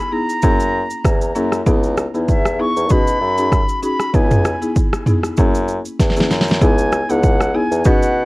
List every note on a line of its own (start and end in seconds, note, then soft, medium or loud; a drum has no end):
0.00 0.14 B5 loud
0.12 0.34 B3 medium
0.12 0.34 D#4 medium
0.12 0.34 E4 medium
0.12 0.34 G#4 medium
0.12 1.36 A#5 loud
0.29 shaker medium
0.42 0.84 F#2 loud
0.42 1.29 A#3 medium
0.42 1.29 C#4 medium
0.42 1.29 E4 medium
0.42 1.29 G#4 loud
0.42 kick loud
0.42 shaker medium
0.60 shaker medium
0.90 shaker medium
1.05 1.31 E2 medium
1.05 kick loud
1.05 cross-stick medium
1.05 shaker medium
1.21 shaker medium
1.35 1.62 F#2 medium
1.35 1.58 A#3 medium
1.35 1.58 C#4 medium
1.35 1.58 E4 medium
1.35 1.58 G#4 medium
1.35 shaker medium
1.52 cross-stick medium
1.52 shaker soft
1.66 2.07 C#2 loud
1.66 2.10 B3 loud
1.66 2.10 D#4 medium
1.66 2.11 E4 medium
1.66 2.11 G#4 loud
1.66 kick loud
1.66 shaker medium
1.83 shaker medium
1.97 cross-stick loud
1.97 shaker medium
2.14 2.67 E2 medium
2.14 2.34 B3 medium
2.14 2.35 D#4 medium
2.14 2.35 E4 medium
2.14 2.35 G#4 medium
2.14 shaker medium
2.28 2.62 E5 loud
2.28 kick loud
2.28 shaker medium
2.45 cross-stick loud
2.45 shaker soft
2.59 2.81 B3 medium
2.59 2.81 D#4 medium
2.59 2.82 E4 medium
2.59 2.82 G#4 medium
2.59 2.93 C#6 loud
2.76 2.92 E2 medium
2.76 shaker medium
2.90 3.17 B2 loud
2.90 3.34 C#4 medium
2.90 3.34 D#4 medium
2.90 3.34 F#4 medium
2.90 3.34 G#4 loud
2.90 3.84 B5 loud
2.90 kick loud
2.90 shaker medium
3.07 shaker medium
3.21 3.62 F#2 medium
3.38 3.58 C#4 medium
3.38 3.58 D#4 medium
3.38 3.58 F#4 medium
3.38 3.58 G#4 medium
3.38 shaker medium
3.52 kick loud
3.52 cross-stick medium
3.52 shaker medium
3.69 shaker medium
3.83 4.05 C#4 medium
3.83 4.05 D#4 medium
3.83 4.05 F#4 medium
3.83 4.05 G#4 medium
3.83 4.17 B5 loud
3.83 shaker medium
4.00 cross-stick medium
4.00 shaker soft
4.14 4.55 C#2 loud
4.14 4.58 B3 medium
4.14 4.58 D#4 medium
4.14 4.58 E4 medium
4.14 4.58 G#4 loud
4.14 4.76 G#5 medium
4.14 kick loud
4.14 shaker medium
4.31 mid tom loud
4.31 shaker medium
4.45 cross-stick loud
4.45 shaker medium
4.62 4.82 B3 medium
4.62 4.82 D#4 medium
4.62 4.82 E4 medium
4.62 4.82 G#4 medium
4.62 shaker soft
4.76 kick loud
4.76 shaker medium
4.93 cross-stick loud
4.93 shaker soft
5.06 5.29 B3 medium
5.06 5.29 D#4 medium
5.06 5.29 E4 medium
5.06 5.29 G#4 medium
5.06 mid tom medium
5.06 shaker medium
5.23 cross-stick medium
5.23 shaker medium
5.37 5.79 F#2 loud
5.37 6.10 A#3 medium
5.37 6.10 C#4 medium
5.37 6.10 E4 medium
5.37 6.10 G#4 loud
5.37 kick loud
5.37 shaker medium
5.55 shaker medium
5.68 shaker medium
5.85 shaker medium
6.00 6.26 E2 medium
6.00 kick loud
6.00 snare medium
6.00 shaker medium
6.10 snare medium
6.16 6.37 A#3 medium
6.16 6.37 C#4 medium
6.16 6.37 E4 medium
6.16 6.37 G#4 medium
6.16 snare medium
6.16 shaker medium
6.31 6.57 F#2 medium
6.31 snare medium
6.31 shaker medium
6.41 snare loud
6.48 snare medium
6.48 shaker soft
6.61 7.02 C#2 loud
6.61 7.05 B3 loud
6.61 7.05 D#4 medium
6.61 7.05 E4 medium
6.61 7.05 G#4 loud
6.61 7.12 G#5 loud
6.61 kick loud
6.61 shaker medium
6.78 shaker medium
6.92 cross-stick loud
6.92 shaker medium
7.09 7.62 C#2 loud
7.09 7.29 B3 medium
7.09 7.29 D#4 medium
7.09 7.30 E4 medium
7.09 7.30 G#4 medium
7.09 7.57 F#5 loud
7.09 shaker medium
7.23 kick loud
7.23 shaker medium
7.41 cross-stick loud
7.41 shaker soft
7.54 7.76 B3 medium
7.54 7.76 D#4 medium
7.54 7.76 E4 medium
7.54 7.77 G#4 medium
7.54 7.80 G#5 medium
7.71 7.83 E2 medium
7.71 shaker medium
7.80 7.88 G#5 medium
7.84 8.25 B2 loud
7.84 8.25 C#4 loud
7.84 8.25 D#4 medium
7.84 8.25 F#4 medium
7.84 8.25 G#4 loud
7.84 8.25 F#5 loud
7.84 kick loud
7.84 shaker medium
8.02 shaker medium